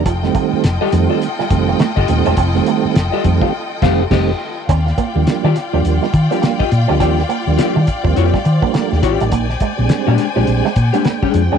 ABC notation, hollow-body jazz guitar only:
X:1
M:4/4
L:1/16
Q:"Swing 16ths" 1/4=104
K:Eblyd
V:1 name="Hollow-body jazz guitar"
z4 z [GAe] z [GAe] z4 z [GAe] z [GAe] | z4 z [GAe] z [GAf] z2 [GAf]2 [GAe]2 z2 | z4 z [FGd] z [FGd] z3 [FGd] z [FGe] z [FGe] | [FGd] z3 [FGd] z3 [FGd] z4 z [FGd] z |
z4 z [_A,DG] z [A,DG] z3 [A,DG] z [A,D_A] z [A,DA] |]